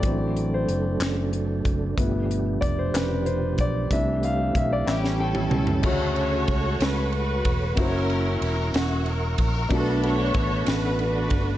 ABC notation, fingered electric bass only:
X:1
M:6/8
L:1/8
Q:3/8=62
K:Ddor
V:1 name="Fingered electric bass" clef=bass
A,,,2 ^F,,, F,,,2 F,,, | G,,,2 F,,, F,,,2 B,,, | C,,2 B,,, A,,,2 ^C,, | [K:D] z2 C,, C,,2 E,,, |
F,,,2 E,,, E,,,2 ^A,,, | B,,,2 A,,, A,,,2 G,,, |]